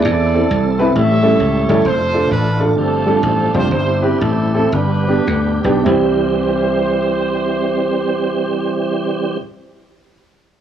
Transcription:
0.04 E2 E3 C4 E4 A4 D5
0.34 C4 E4 A4
0.51 C2
0.79 C4 E4 B4
0.95 A1 A2 G3 A3 C#4 E4 G4 A4 C#5 E5
1.23 G3 A3 C#4 E4 A4
1.40 C#2
1.69 G1 G3 A3 C#4 E4 A4
1.85 F1 A3 D4 F4 A4 C5
2.14 D4 F4 A4
2.31 A1 D4 F4 B4
2.59 D4 F4 A4
2.76 G1 G2 F3 A3 C4 D4 F4 G4 A4
3.06 G3 C4 D4 F4 A4
3.23 A1
3.54 F1 G3 C4 D4 F4 C5
3.69 G1 G2 C4 E4 G4 C5
4.03 C4 E4 G4 B4
4.20 A1 A4
4.54 C4 E4 A4
4.72 G1 G2 B3 D4 G4 B4
5.08 B3 D4 G4
5.27 D2
5.64 B1 B3 D4 G4
5.84 C2 E3 G3 C4 G4 C5

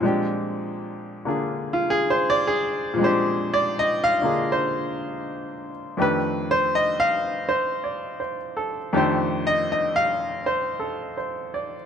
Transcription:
0.01 A#2 F3 G#3 C4
0.05 D4 G4
1.25 D3 A#3 D4 F4 G#4
1.73 F4
1.90 G#4
2.10 C5
2.30 D5
2.47 G#4
2.94 A#2 F3
2.99 G#3 C4
3.03 D4 G4 C5
3.54 D5
3.79 D#5
4.04 F5
4.22 D3 A#3 D4 F4 G#4
4.52 C5
5.97 F2 D#3 A3 D4 G4
6.02 B4
6.51 C5
6.75 D#5
7.00 F5
7.49 C5
7.84 D5
8.20 C5
8.57 A4
8.93 F2 D#3 A3 D4 G4
8.97 C5
9.47 D#5
9.72 D#5
9.96 F5
10.46 C5
10.80 A4
11.17 C5
11.54 D5

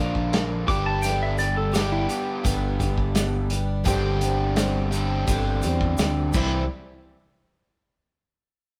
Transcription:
Already playing: A#1 A#2 D3 A#3 D4 F4 A#4 D5
0.00 F3 A#3 D4
0.15 kick
0.31 F4 A#4 D5, snare, closed hi-hat
0.67 G1 G2 D3 G3 B3 D4 G4 B4 D5 D6, kick, closed hi-hat
0.86 A5
1.02 G2 D3 G3 B3 D4 G4 G5, closed hi-hat, shaker
1.23 E5
1.38 G3 B3 D4 G4 D5, closed hi-hat, shaker
1.57 A4
1.71 G2 D3 G3 B3 D4 G4 B4, closed hi-hat, shaker
1.76 D5, snare
1.92 E4
2.09 G4, closed hi-hat, shaker
2.43 G1 G2 D3 G3 B3 D4 G4 B4 D5, kick, closed hi-hat, shaker
2.79 G3 B3 D4 G4, kick, closed hi-hat, shaker
2.98 kick
3.15 G4 B4 D5, snare, closed hi-hat, shaker
3.50 G3 B3 D4 G4, closed hi-hat, shaker
3.84 G1 G2 D3 G3 C4 D4 G4 C5, kick, closed hi-hat, shaker
3.88 D5
4.21 G3 C4 D4 G4, closed hi-hat, shaker
4.56 G3 C4 D4 G4 C5 D5, snare, closed hi-hat, shaker
4.91 G2 D3 G3 C4 D4 G4, closed hi-hat, shaker
5.26 G1 G2 D3 G3 C4 D4 G4 C5 F5, kick, closed hi-hat, shaker
5.30 G4
5.62 E2 G3 C4 D4 G4, closed hi-hat, shaker
5.81 kick
5.98 D2 G4 C5 D5, snare, closed hi-hat, shaker
6.33 C2 C3 E3 G3 C4 D4 E4 G4 C5 D5, kick, crash, shaker

